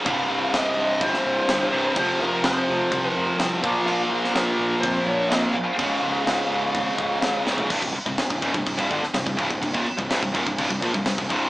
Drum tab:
CC |x---x---x---x---|x---x---x---x---|x---x---x---x---|x---x---x---x---|
SD |----o----o--o---|----o-------o---|---oo-------o---|----o-------o-o-|
FT |----------------|----------------|----------------|---------------o|
BD |o-------o-------|o-------o-----o-|--------o-------|o-------o-o-----|

CC |x-x-x-x-x-x-x-x-|x-x-x-x-x-x-x-x-|
SD |----o------oo---|----o-------o---|
FT |----------------|----------------|
BD |oo-o-oooooo--ooo|oo-o-ooooooo-oo-|